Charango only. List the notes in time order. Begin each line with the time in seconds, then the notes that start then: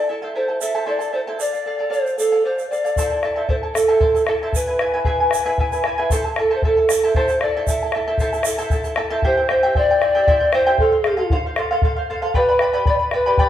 0.09 E4 A4 E5 A5
0.22 E4 A4 C5 E5 A5
0.35 E4 A4 E5 A5
0.48 E4 A4 A5
0.61 E4 A4 E5 A5
0.75 E4 A4 C5 E5 A5
0.86 E4 A4 C5 E5 A5
0.99 E4 A4 A5
1.13 E4 A4 E5 A5
1.27 E4 A4 C5 E5 A5
1.39 A4 D5 F5
1.53 D5 F5
1.66 A4 D5 F5
1.79 A4 D5 F5
1.90 A4 D5 F5
2.04 D5 F5
2.18 A4 D5 F5
2.32 A4 D5 F5
2.45 A4 D5 F5
2.58 D5 F5
2.71 A4 D5 F5
2.84 A4 D5 F5
2.98 E4 A4 C5 E5 A5
3.11 E4 A4 A5
3.24 E4 A4 E5 A5
3.36 E4 A4 C5 E5 A5
3.49 E4 A4 E5 A5
3.63 E4 A4 A5
3.75 E4 A4 E5 A5
3.88 E4 A4 C5 E5 A5
4.00 E4 A4 C5 E5 A5
4.14 E4 A4 A5
4.28 E4 A4 E5 A5
4.43 E4 A4 C5 E5 A5
4.55 E4 B4 E5 G#5
4.67 E4 B4 G#5
4.80 E4 B4 E5 G#5
4.94 E4 G#4 B4 E5 G#5
5.05 E4 G#4 B4 E5 G#5
5.20 E4 B4 G#5
5.32 E4 B4 E5 G#5
5.45 E4 G#4 B4 E5 G#5
5.59 E4 B4 E5 G#5
5.72 E4 B4 G#5
5.86 E4 B4 E5 G#5
5.98 E4 G#4 B4 E5 G#5
6.11 E4 A4 C5 E5 A5
6.24 E4 A4 A5
6.38 E4 A4 E5 A5
6.51 E4 A4 C5 E5 A5
6.64 E4 A4 E5 A5
6.77 E4 A4 A5
6.90 E4 A4 E5 A5
7.04 E4 A4 C5 E5 A5
7.16 E4 A4 C5 E5 A5
7.30 E4 A4 A5
7.43 E4 A4 E5 A5
7.56 E4 A4 C5 E5 A5
7.68 E4 A4 E5 A5
7.82 E4 A4 A5
7.95 E4 A4 E5 A5
8.07 E4 A4 C5 E5 A5
8.20 E4 A4 C5 E5 A5
8.33 E4 A4 A5
8.46 E4 A4 E5 A5
8.58 E4 A4 C5 E5 A5
8.71 E4 A4 E5 A5
8.84 E4 A4 A5
8.97 E4 A4 E5 A5
9.10 E4 A4 C5 E5 A5
9.24 E4 G4 C5 E5 G5
9.37 E4 C5 G5
9.49 E4 C5 E5 G5
9.63 E4 G4 C5 E5 G5
9.76 E4 C5 E5 G5
9.91 E4 C5 G5
10.02 E4 C5 E5 G5
10.15 E4 G4 C5 E5 G5
10.27 E4 G4 C5 E5 G5
10.40 E4 C5 G5
10.54 E4 C5 E5 G5
10.66 E4 G4 C5 E5 G5
10.80 A4 C5 F5
10.92 C5 F5
11.06 A4 C5 F5
11.17 A4 C5 F5
11.32 A4 C5 F5
11.46 C5 F5
11.58 A4 C5 F5
11.71 A4 C5 F5
11.83 A4 C5 F5
11.97 C5 F5
12.10 A4 C5 F5
12.22 A4 C5 F5
12.34 G4 B4 D5 G5 B5
12.49 B4 D5 B5
12.61 B4 D5 G5 B5
12.73 G4 B4 D5 G5 B5
12.87 B4 D5 G5 B5
12.99 B4 D5 B5
13.13 B4 D5 G5 B5
13.26 G4 B4 D5 G5 B5
13.39 G4 B4 D5 G5 B5